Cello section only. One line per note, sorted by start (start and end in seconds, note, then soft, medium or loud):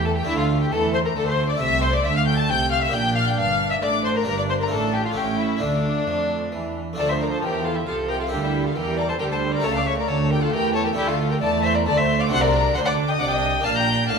0.00 0.27 E3 medium
0.28 0.71 D3 medium
0.72 1.15 E3 medium
1.16 1.59 D3 medium
1.60 2.03 C3 medium
2.04 2.48 D3 medium
2.49 2.93 C3 medium
2.93 3.37 A#2 medium
3.38 3.81 G2 medium
3.82 4.26 A2 medium
4.27 4.70 G2 medium
4.71 5.15 A2 medium
5.16 5.61 A2 medium
5.61 6.06 D3 medium
6.07 6.52 F3 medium
6.53 6.98 E3 medium
6.98 7.40 D3 medium
7.43 7.87 E3 medium
7.87 8.31 C3 medium
8.32 8.76 D3 medium
8.76 9.20 E3 medium
9.21 9.64 D3 medium
9.65 10.08 C#3 medium
10.09 10.52 D3 medium
10.53 10.97 E3 medium
10.97 11.41 D3 medium
11.42 11.86 E3 medium
11.87 12.31 D3 medium
12.31 12.75 C3 medium
12.75 13.19 D3 medium
13.20 13.64 C3 medium
13.65 14.08 A#2 medium
14.09 14.19 A2 medium